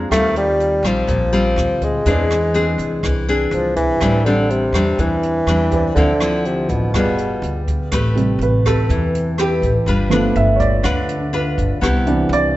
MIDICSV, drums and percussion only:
0, 0, Header, 1, 2, 480
1, 0, Start_track
1, 0, Tempo, 487805
1, 109, Time_signature, 4, 2, 24, 8
1, 12366, End_track
2, 0, Start_track
2, 0, Title_t, "Drums"
2, 110, Note_on_c, 9, 36, 56
2, 114, Note_on_c, 9, 37, 56
2, 114, Note_on_c, 9, 42, 60
2, 208, Note_off_c, 9, 36, 0
2, 213, Note_off_c, 9, 37, 0
2, 213, Note_off_c, 9, 42, 0
2, 352, Note_on_c, 9, 42, 42
2, 450, Note_off_c, 9, 42, 0
2, 591, Note_on_c, 9, 42, 41
2, 689, Note_off_c, 9, 42, 0
2, 831, Note_on_c, 9, 37, 53
2, 831, Note_on_c, 9, 42, 39
2, 930, Note_off_c, 9, 37, 0
2, 930, Note_off_c, 9, 42, 0
2, 1065, Note_on_c, 9, 42, 48
2, 1067, Note_on_c, 9, 36, 54
2, 1164, Note_off_c, 9, 42, 0
2, 1166, Note_off_c, 9, 36, 0
2, 1309, Note_on_c, 9, 42, 41
2, 1407, Note_off_c, 9, 42, 0
2, 1550, Note_on_c, 9, 37, 58
2, 1550, Note_on_c, 9, 42, 42
2, 1648, Note_off_c, 9, 37, 0
2, 1648, Note_off_c, 9, 42, 0
2, 1787, Note_on_c, 9, 42, 40
2, 1788, Note_on_c, 9, 36, 54
2, 1885, Note_off_c, 9, 42, 0
2, 1886, Note_off_c, 9, 36, 0
2, 2024, Note_on_c, 9, 42, 55
2, 2027, Note_on_c, 9, 36, 58
2, 2122, Note_off_c, 9, 42, 0
2, 2125, Note_off_c, 9, 36, 0
2, 2268, Note_on_c, 9, 37, 54
2, 2268, Note_on_c, 9, 42, 40
2, 2367, Note_off_c, 9, 37, 0
2, 2367, Note_off_c, 9, 42, 0
2, 2503, Note_on_c, 9, 42, 42
2, 2601, Note_off_c, 9, 42, 0
2, 2743, Note_on_c, 9, 42, 44
2, 2842, Note_off_c, 9, 42, 0
2, 2986, Note_on_c, 9, 36, 56
2, 2986, Note_on_c, 9, 37, 60
2, 2986, Note_on_c, 9, 42, 56
2, 3084, Note_off_c, 9, 37, 0
2, 3084, Note_off_c, 9, 42, 0
2, 3085, Note_off_c, 9, 36, 0
2, 3231, Note_on_c, 9, 42, 43
2, 3330, Note_off_c, 9, 42, 0
2, 3465, Note_on_c, 9, 42, 46
2, 3564, Note_off_c, 9, 42, 0
2, 3703, Note_on_c, 9, 42, 45
2, 3707, Note_on_c, 9, 36, 53
2, 3801, Note_off_c, 9, 42, 0
2, 3805, Note_off_c, 9, 36, 0
2, 3945, Note_on_c, 9, 37, 56
2, 3945, Note_on_c, 9, 42, 58
2, 3946, Note_on_c, 9, 36, 59
2, 4043, Note_off_c, 9, 37, 0
2, 4043, Note_off_c, 9, 42, 0
2, 4045, Note_off_c, 9, 36, 0
2, 4192, Note_on_c, 9, 42, 45
2, 4291, Note_off_c, 9, 42, 0
2, 4431, Note_on_c, 9, 42, 41
2, 4529, Note_off_c, 9, 42, 0
2, 4664, Note_on_c, 9, 37, 57
2, 4664, Note_on_c, 9, 42, 44
2, 4763, Note_off_c, 9, 37, 0
2, 4763, Note_off_c, 9, 42, 0
2, 4907, Note_on_c, 9, 42, 57
2, 4908, Note_on_c, 9, 36, 55
2, 5005, Note_off_c, 9, 42, 0
2, 5006, Note_off_c, 9, 36, 0
2, 5146, Note_on_c, 9, 42, 40
2, 5244, Note_off_c, 9, 42, 0
2, 5383, Note_on_c, 9, 37, 60
2, 5383, Note_on_c, 9, 42, 39
2, 5482, Note_off_c, 9, 37, 0
2, 5482, Note_off_c, 9, 42, 0
2, 5622, Note_on_c, 9, 42, 42
2, 5628, Note_on_c, 9, 36, 57
2, 5720, Note_off_c, 9, 42, 0
2, 5726, Note_off_c, 9, 36, 0
2, 5866, Note_on_c, 9, 42, 56
2, 5867, Note_on_c, 9, 36, 57
2, 5965, Note_off_c, 9, 42, 0
2, 5966, Note_off_c, 9, 36, 0
2, 6104, Note_on_c, 9, 37, 58
2, 6104, Note_on_c, 9, 42, 42
2, 6202, Note_off_c, 9, 37, 0
2, 6202, Note_off_c, 9, 42, 0
2, 6346, Note_on_c, 9, 42, 37
2, 6444, Note_off_c, 9, 42, 0
2, 6585, Note_on_c, 9, 42, 39
2, 6589, Note_on_c, 9, 36, 50
2, 6684, Note_off_c, 9, 42, 0
2, 6687, Note_off_c, 9, 36, 0
2, 6829, Note_on_c, 9, 37, 59
2, 6829, Note_on_c, 9, 42, 58
2, 6830, Note_on_c, 9, 36, 57
2, 6927, Note_off_c, 9, 37, 0
2, 6927, Note_off_c, 9, 42, 0
2, 6928, Note_off_c, 9, 36, 0
2, 7067, Note_on_c, 9, 42, 49
2, 7166, Note_off_c, 9, 42, 0
2, 7313, Note_on_c, 9, 42, 42
2, 7411, Note_off_c, 9, 42, 0
2, 7554, Note_on_c, 9, 36, 53
2, 7554, Note_on_c, 9, 42, 45
2, 7652, Note_off_c, 9, 36, 0
2, 7653, Note_off_c, 9, 42, 0
2, 7790, Note_on_c, 9, 37, 55
2, 7790, Note_on_c, 9, 42, 63
2, 7795, Note_on_c, 9, 36, 59
2, 7888, Note_off_c, 9, 37, 0
2, 7888, Note_off_c, 9, 42, 0
2, 7893, Note_off_c, 9, 36, 0
2, 8041, Note_on_c, 9, 42, 46
2, 8140, Note_off_c, 9, 42, 0
2, 8277, Note_on_c, 9, 42, 40
2, 8375, Note_off_c, 9, 42, 0
2, 8517, Note_on_c, 9, 36, 53
2, 8519, Note_on_c, 9, 37, 55
2, 8519, Note_on_c, 9, 42, 41
2, 8615, Note_off_c, 9, 36, 0
2, 8617, Note_off_c, 9, 37, 0
2, 8617, Note_off_c, 9, 42, 0
2, 8755, Note_on_c, 9, 36, 55
2, 8755, Note_on_c, 9, 42, 53
2, 8854, Note_off_c, 9, 36, 0
2, 8854, Note_off_c, 9, 42, 0
2, 9000, Note_on_c, 9, 42, 45
2, 9099, Note_off_c, 9, 42, 0
2, 9231, Note_on_c, 9, 37, 54
2, 9231, Note_on_c, 9, 42, 40
2, 9329, Note_off_c, 9, 37, 0
2, 9329, Note_off_c, 9, 42, 0
2, 9474, Note_on_c, 9, 36, 56
2, 9475, Note_on_c, 9, 42, 41
2, 9572, Note_off_c, 9, 36, 0
2, 9574, Note_off_c, 9, 42, 0
2, 9712, Note_on_c, 9, 36, 55
2, 9715, Note_on_c, 9, 42, 52
2, 9810, Note_off_c, 9, 36, 0
2, 9813, Note_off_c, 9, 42, 0
2, 9949, Note_on_c, 9, 37, 60
2, 9949, Note_on_c, 9, 42, 40
2, 10047, Note_off_c, 9, 37, 0
2, 10047, Note_off_c, 9, 42, 0
2, 10188, Note_on_c, 9, 42, 38
2, 10286, Note_off_c, 9, 42, 0
2, 10427, Note_on_c, 9, 42, 41
2, 10430, Note_on_c, 9, 36, 53
2, 10525, Note_off_c, 9, 42, 0
2, 10529, Note_off_c, 9, 36, 0
2, 10665, Note_on_c, 9, 37, 58
2, 10665, Note_on_c, 9, 42, 54
2, 10669, Note_on_c, 9, 36, 54
2, 10763, Note_off_c, 9, 37, 0
2, 10763, Note_off_c, 9, 42, 0
2, 10768, Note_off_c, 9, 36, 0
2, 10909, Note_on_c, 9, 42, 47
2, 11007, Note_off_c, 9, 42, 0
2, 11151, Note_on_c, 9, 42, 42
2, 11250, Note_off_c, 9, 42, 0
2, 11393, Note_on_c, 9, 36, 52
2, 11397, Note_on_c, 9, 42, 41
2, 11491, Note_off_c, 9, 36, 0
2, 11495, Note_off_c, 9, 42, 0
2, 11634, Note_on_c, 9, 36, 63
2, 11643, Note_on_c, 9, 37, 61
2, 11643, Note_on_c, 9, 42, 64
2, 11732, Note_off_c, 9, 36, 0
2, 11741, Note_off_c, 9, 37, 0
2, 11741, Note_off_c, 9, 42, 0
2, 11873, Note_on_c, 9, 42, 43
2, 11971, Note_off_c, 9, 42, 0
2, 12126, Note_on_c, 9, 42, 42
2, 12224, Note_off_c, 9, 42, 0
2, 12366, End_track
0, 0, End_of_file